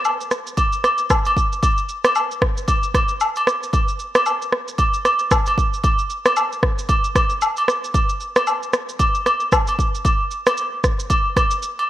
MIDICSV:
0, 0, Header, 1, 2, 480
1, 0, Start_track
1, 0, Tempo, 526316
1, 1485, Time_signature, 4, 2, 24, 8
1, 10851, End_track
2, 0, Start_track
2, 0, Title_t, "Drums"
2, 43, Note_on_c, 9, 82, 67
2, 47, Note_on_c, 9, 77, 76
2, 134, Note_off_c, 9, 82, 0
2, 138, Note_off_c, 9, 77, 0
2, 189, Note_on_c, 9, 82, 51
2, 280, Note_off_c, 9, 82, 0
2, 282, Note_on_c, 9, 82, 51
2, 285, Note_on_c, 9, 37, 90
2, 373, Note_off_c, 9, 82, 0
2, 376, Note_off_c, 9, 37, 0
2, 427, Note_on_c, 9, 82, 56
2, 518, Note_off_c, 9, 82, 0
2, 521, Note_on_c, 9, 67, 76
2, 524, Note_on_c, 9, 82, 68
2, 525, Note_on_c, 9, 36, 94
2, 613, Note_off_c, 9, 67, 0
2, 615, Note_off_c, 9, 82, 0
2, 616, Note_off_c, 9, 36, 0
2, 662, Note_on_c, 9, 82, 52
2, 753, Note_off_c, 9, 82, 0
2, 766, Note_on_c, 9, 37, 86
2, 767, Note_on_c, 9, 67, 78
2, 767, Note_on_c, 9, 82, 44
2, 857, Note_off_c, 9, 37, 0
2, 858, Note_off_c, 9, 82, 0
2, 859, Note_off_c, 9, 67, 0
2, 893, Note_on_c, 9, 82, 47
2, 985, Note_off_c, 9, 82, 0
2, 1001, Note_on_c, 9, 82, 75
2, 1004, Note_on_c, 9, 36, 90
2, 1006, Note_on_c, 9, 37, 92
2, 1008, Note_on_c, 9, 77, 78
2, 1092, Note_off_c, 9, 82, 0
2, 1095, Note_off_c, 9, 36, 0
2, 1097, Note_off_c, 9, 37, 0
2, 1099, Note_off_c, 9, 77, 0
2, 1141, Note_on_c, 9, 82, 52
2, 1154, Note_on_c, 9, 67, 67
2, 1232, Note_off_c, 9, 82, 0
2, 1245, Note_off_c, 9, 67, 0
2, 1246, Note_on_c, 9, 36, 95
2, 1255, Note_on_c, 9, 82, 57
2, 1337, Note_off_c, 9, 36, 0
2, 1346, Note_off_c, 9, 82, 0
2, 1391, Note_on_c, 9, 82, 50
2, 1483, Note_off_c, 9, 82, 0
2, 1483, Note_on_c, 9, 67, 65
2, 1485, Note_on_c, 9, 36, 106
2, 1487, Note_on_c, 9, 82, 70
2, 1574, Note_off_c, 9, 67, 0
2, 1576, Note_off_c, 9, 36, 0
2, 1578, Note_off_c, 9, 82, 0
2, 1620, Note_on_c, 9, 82, 50
2, 1712, Note_off_c, 9, 82, 0
2, 1722, Note_on_c, 9, 82, 54
2, 1813, Note_off_c, 9, 82, 0
2, 1863, Note_on_c, 9, 82, 46
2, 1865, Note_on_c, 9, 37, 105
2, 1873, Note_on_c, 9, 67, 78
2, 1954, Note_off_c, 9, 82, 0
2, 1956, Note_off_c, 9, 37, 0
2, 1963, Note_on_c, 9, 82, 67
2, 1964, Note_off_c, 9, 67, 0
2, 1967, Note_on_c, 9, 77, 73
2, 2054, Note_off_c, 9, 82, 0
2, 2058, Note_off_c, 9, 77, 0
2, 2109, Note_on_c, 9, 82, 48
2, 2201, Note_off_c, 9, 82, 0
2, 2204, Note_on_c, 9, 36, 98
2, 2205, Note_on_c, 9, 37, 97
2, 2296, Note_off_c, 9, 36, 0
2, 2296, Note_off_c, 9, 37, 0
2, 2347, Note_on_c, 9, 82, 57
2, 2439, Note_off_c, 9, 82, 0
2, 2442, Note_on_c, 9, 67, 72
2, 2444, Note_on_c, 9, 82, 68
2, 2445, Note_on_c, 9, 36, 95
2, 2533, Note_off_c, 9, 67, 0
2, 2536, Note_off_c, 9, 36, 0
2, 2536, Note_off_c, 9, 82, 0
2, 2582, Note_on_c, 9, 82, 51
2, 2674, Note_off_c, 9, 82, 0
2, 2685, Note_on_c, 9, 36, 95
2, 2686, Note_on_c, 9, 37, 84
2, 2687, Note_on_c, 9, 67, 77
2, 2687, Note_on_c, 9, 82, 44
2, 2776, Note_off_c, 9, 36, 0
2, 2777, Note_off_c, 9, 37, 0
2, 2778, Note_off_c, 9, 82, 0
2, 2779, Note_off_c, 9, 67, 0
2, 2814, Note_on_c, 9, 82, 46
2, 2905, Note_off_c, 9, 82, 0
2, 2921, Note_on_c, 9, 82, 71
2, 2928, Note_on_c, 9, 77, 81
2, 3012, Note_off_c, 9, 82, 0
2, 3019, Note_off_c, 9, 77, 0
2, 3062, Note_on_c, 9, 82, 51
2, 3074, Note_on_c, 9, 67, 66
2, 3153, Note_off_c, 9, 82, 0
2, 3165, Note_off_c, 9, 67, 0
2, 3165, Note_on_c, 9, 37, 97
2, 3175, Note_on_c, 9, 82, 56
2, 3257, Note_off_c, 9, 37, 0
2, 3266, Note_off_c, 9, 82, 0
2, 3312, Note_on_c, 9, 82, 50
2, 3402, Note_on_c, 9, 67, 69
2, 3403, Note_off_c, 9, 82, 0
2, 3405, Note_on_c, 9, 36, 107
2, 3407, Note_on_c, 9, 82, 67
2, 3493, Note_off_c, 9, 67, 0
2, 3497, Note_off_c, 9, 36, 0
2, 3499, Note_off_c, 9, 82, 0
2, 3541, Note_on_c, 9, 82, 51
2, 3632, Note_off_c, 9, 82, 0
2, 3642, Note_on_c, 9, 82, 53
2, 3733, Note_off_c, 9, 82, 0
2, 3783, Note_on_c, 9, 82, 44
2, 3786, Note_on_c, 9, 37, 112
2, 3792, Note_on_c, 9, 67, 78
2, 3874, Note_off_c, 9, 82, 0
2, 3877, Note_off_c, 9, 37, 0
2, 3883, Note_off_c, 9, 67, 0
2, 3883, Note_on_c, 9, 82, 67
2, 3887, Note_on_c, 9, 77, 73
2, 3974, Note_off_c, 9, 82, 0
2, 3978, Note_off_c, 9, 77, 0
2, 4031, Note_on_c, 9, 82, 52
2, 4122, Note_off_c, 9, 82, 0
2, 4126, Note_on_c, 9, 37, 94
2, 4217, Note_off_c, 9, 37, 0
2, 4268, Note_on_c, 9, 82, 56
2, 4359, Note_off_c, 9, 82, 0
2, 4361, Note_on_c, 9, 67, 72
2, 4364, Note_on_c, 9, 82, 68
2, 4365, Note_on_c, 9, 36, 93
2, 4453, Note_off_c, 9, 67, 0
2, 4456, Note_off_c, 9, 36, 0
2, 4456, Note_off_c, 9, 82, 0
2, 4503, Note_on_c, 9, 82, 54
2, 4594, Note_off_c, 9, 82, 0
2, 4606, Note_on_c, 9, 37, 82
2, 4607, Note_on_c, 9, 67, 78
2, 4607, Note_on_c, 9, 82, 46
2, 4697, Note_off_c, 9, 37, 0
2, 4698, Note_off_c, 9, 67, 0
2, 4698, Note_off_c, 9, 82, 0
2, 4734, Note_on_c, 9, 82, 48
2, 4825, Note_off_c, 9, 82, 0
2, 4841, Note_on_c, 9, 82, 73
2, 4844, Note_on_c, 9, 36, 99
2, 4846, Note_on_c, 9, 37, 90
2, 4848, Note_on_c, 9, 77, 77
2, 4932, Note_off_c, 9, 82, 0
2, 4935, Note_off_c, 9, 36, 0
2, 4937, Note_off_c, 9, 37, 0
2, 4940, Note_off_c, 9, 77, 0
2, 4981, Note_on_c, 9, 82, 55
2, 4994, Note_on_c, 9, 67, 68
2, 5072, Note_off_c, 9, 82, 0
2, 5085, Note_off_c, 9, 67, 0
2, 5086, Note_on_c, 9, 36, 99
2, 5095, Note_on_c, 9, 82, 59
2, 5177, Note_off_c, 9, 36, 0
2, 5186, Note_off_c, 9, 82, 0
2, 5232, Note_on_c, 9, 82, 51
2, 5322, Note_on_c, 9, 67, 67
2, 5323, Note_off_c, 9, 82, 0
2, 5325, Note_on_c, 9, 36, 106
2, 5327, Note_on_c, 9, 82, 69
2, 5413, Note_off_c, 9, 67, 0
2, 5416, Note_off_c, 9, 36, 0
2, 5418, Note_off_c, 9, 82, 0
2, 5460, Note_on_c, 9, 82, 53
2, 5552, Note_off_c, 9, 82, 0
2, 5562, Note_on_c, 9, 82, 52
2, 5653, Note_off_c, 9, 82, 0
2, 5703, Note_on_c, 9, 82, 44
2, 5705, Note_on_c, 9, 37, 111
2, 5712, Note_on_c, 9, 67, 78
2, 5794, Note_off_c, 9, 82, 0
2, 5796, Note_off_c, 9, 37, 0
2, 5803, Note_off_c, 9, 67, 0
2, 5803, Note_on_c, 9, 82, 66
2, 5807, Note_on_c, 9, 77, 72
2, 5894, Note_off_c, 9, 82, 0
2, 5898, Note_off_c, 9, 77, 0
2, 5950, Note_on_c, 9, 82, 50
2, 6041, Note_off_c, 9, 82, 0
2, 6044, Note_on_c, 9, 36, 96
2, 6045, Note_on_c, 9, 37, 94
2, 6136, Note_off_c, 9, 36, 0
2, 6137, Note_off_c, 9, 37, 0
2, 6188, Note_on_c, 9, 82, 58
2, 6279, Note_off_c, 9, 82, 0
2, 6281, Note_on_c, 9, 67, 72
2, 6285, Note_on_c, 9, 36, 96
2, 6285, Note_on_c, 9, 82, 69
2, 6373, Note_off_c, 9, 67, 0
2, 6376, Note_off_c, 9, 36, 0
2, 6376, Note_off_c, 9, 82, 0
2, 6422, Note_on_c, 9, 82, 51
2, 6514, Note_off_c, 9, 82, 0
2, 6525, Note_on_c, 9, 36, 100
2, 6526, Note_on_c, 9, 37, 88
2, 6527, Note_on_c, 9, 67, 75
2, 6527, Note_on_c, 9, 82, 48
2, 6616, Note_off_c, 9, 36, 0
2, 6618, Note_off_c, 9, 37, 0
2, 6618, Note_off_c, 9, 67, 0
2, 6618, Note_off_c, 9, 82, 0
2, 6654, Note_on_c, 9, 82, 46
2, 6745, Note_off_c, 9, 82, 0
2, 6761, Note_on_c, 9, 82, 70
2, 6768, Note_on_c, 9, 77, 81
2, 6852, Note_off_c, 9, 82, 0
2, 6859, Note_off_c, 9, 77, 0
2, 6901, Note_on_c, 9, 82, 53
2, 6914, Note_on_c, 9, 67, 69
2, 6992, Note_off_c, 9, 82, 0
2, 7005, Note_off_c, 9, 67, 0
2, 7005, Note_on_c, 9, 37, 97
2, 7015, Note_on_c, 9, 82, 57
2, 7096, Note_off_c, 9, 37, 0
2, 7106, Note_off_c, 9, 82, 0
2, 7152, Note_on_c, 9, 82, 51
2, 7242, Note_on_c, 9, 67, 64
2, 7243, Note_off_c, 9, 82, 0
2, 7245, Note_on_c, 9, 36, 103
2, 7247, Note_on_c, 9, 82, 68
2, 7334, Note_off_c, 9, 67, 0
2, 7336, Note_off_c, 9, 36, 0
2, 7338, Note_off_c, 9, 82, 0
2, 7381, Note_on_c, 9, 82, 54
2, 7472, Note_off_c, 9, 82, 0
2, 7482, Note_on_c, 9, 82, 53
2, 7573, Note_off_c, 9, 82, 0
2, 7623, Note_on_c, 9, 82, 45
2, 7625, Note_on_c, 9, 37, 116
2, 7632, Note_on_c, 9, 67, 77
2, 7714, Note_off_c, 9, 82, 0
2, 7716, Note_off_c, 9, 37, 0
2, 7723, Note_off_c, 9, 67, 0
2, 7723, Note_on_c, 9, 82, 70
2, 7726, Note_on_c, 9, 77, 74
2, 7814, Note_off_c, 9, 82, 0
2, 7818, Note_off_c, 9, 77, 0
2, 7870, Note_on_c, 9, 82, 50
2, 7961, Note_off_c, 9, 82, 0
2, 7963, Note_on_c, 9, 82, 53
2, 7965, Note_on_c, 9, 37, 96
2, 8054, Note_off_c, 9, 82, 0
2, 8057, Note_off_c, 9, 37, 0
2, 8107, Note_on_c, 9, 82, 58
2, 8199, Note_off_c, 9, 82, 0
2, 8202, Note_on_c, 9, 67, 74
2, 8204, Note_on_c, 9, 82, 67
2, 8205, Note_on_c, 9, 36, 94
2, 8293, Note_off_c, 9, 67, 0
2, 8295, Note_off_c, 9, 82, 0
2, 8296, Note_off_c, 9, 36, 0
2, 8342, Note_on_c, 9, 82, 55
2, 8434, Note_off_c, 9, 82, 0
2, 8446, Note_on_c, 9, 37, 85
2, 8447, Note_on_c, 9, 82, 45
2, 8448, Note_on_c, 9, 67, 78
2, 8537, Note_off_c, 9, 37, 0
2, 8538, Note_off_c, 9, 82, 0
2, 8539, Note_off_c, 9, 67, 0
2, 8574, Note_on_c, 9, 82, 47
2, 8665, Note_off_c, 9, 82, 0
2, 8681, Note_on_c, 9, 82, 75
2, 8684, Note_on_c, 9, 36, 92
2, 8686, Note_on_c, 9, 37, 98
2, 8688, Note_on_c, 9, 77, 82
2, 8773, Note_off_c, 9, 82, 0
2, 8775, Note_off_c, 9, 36, 0
2, 8777, Note_off_c, 9, 37, 0
2, 8780, Note_off_c, 9, 77, 0
2, 8821, Note_on_c, 9, 82, 52
2, 8834, Note_on_c, 9, 67, 65
2, 8913, Note_off_c, 9, 82, 0
2, 8925, Note_off_c, 9, 67, 0
2, 8926, Note_on_c, 9, 36, 96
2, 8935, Note_on_c, 9, 82, 57
2, 9017, Note_off_c, 9, 36, 0
2, 9026, Note_off_c, 9, 82, 0
2, 9072, Note_on_c, 9, 82, 51
2, 9163, Note_off_c, 9, 82, 0
2, 9163, Note_on_c, 9, 67, 67
2, 9165, Note_on_c, 9, 36, 104
2, 9167, Note_on_c, 9, 82, 70
2, 9254, Note_off_c, 9, 67, 0
2, 9257, Note_off_c, 9, 36, 0
2, 9259, Note_off_c, 9, 82, 0
2, 9402, Note_on_c, 9, 82, 53
2, 9493, Note_off_c, 9, 82, 0
2, 9543, Note_on_c, 9, 82, 63
2, 9545, Note_on_c, 9, 37, 107
2, 9553, Note_on_c, 9, 67, 77
2, 9634, Note_off_c, 9, 82, 0
2, 9637, Note_off_c, 9, 37, 0
2, 9643, Note_on_c, 9, 82, 68
2, 9644, Note_off_c, 9, 67, 0
2, 9734, Note_off_c, 9, 82, 0
2, 9883, Note_on_c, 9, 82, 53
2, 9885, Note_on_c, 9, 36, 95
2, 9886, Note_on_c, 9, 37, 92
2, 9974, Note_off_c, 9, 82, 0
2, 9976, Note_off_c, 9, 36, 0
2, 9977, Note_off_c, 9, 37, 0
2, 10028, Note_on_c, 9, 82, 77
2, 10119, Note_off_c, 9, 82, 0
2, 10122, Note_on_c, 9, 67, 77
2, 10125, Note_on_c, 9, 36, 96
2, 10125, Note_on_c, 9, 82, 72
2, 10213, Note_off_c, 9, 67, 0
2, 10216, Note_off_c, 9, 36, 0
2, 10216, Note_off_c, 9, 82, 0
2, 10365, Note_on_c, 9, 36, 95
2, 10367, Note_on_c, 9, 37, 85
2, 10367, Note_on_c, 9, 82, 48
2, 10368, Note_on_c, 9, 67, 80
2, 10456, Note_off_c, 9, 36, 0
2, 10458, Note_off_c, 9, 37, 0
2, 10458, Note_off_c, 9, 82, 0
2, 10459, Note_off_c, 9, 67, 0
2, 10494, Note_on_c, 9, 82, 68
2, 10585, Note_off_c, 9, 82, 0
2, 10602, Note_on_c, 9, 82, 73
2, 10693, Note_off_c, 9, 82, 0
2, 10754, Note_on_c, 9, 67, 69
2, 10845, Note_off_c, 9, 67, 0
2, 10851, End_track
0, 0, End_of_file